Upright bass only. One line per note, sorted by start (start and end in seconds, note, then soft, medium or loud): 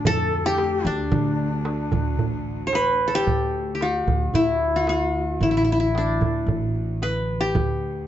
0.05 0.81 F2 medium
0.85 1.10 D2 loud
1.12 1.88 D3 loud
1.92 2.19 D2 medium
2.19 3.23 A1 medium
3.27 4.03 D2 medium
4.07 4.32 D2 medium
4.34 5.37 D2 medium
5.41 6.17 A1 medium
6.21 6.46 D2 medium
6.47 7.51 A1 medium
7.55 8.07 D2 medium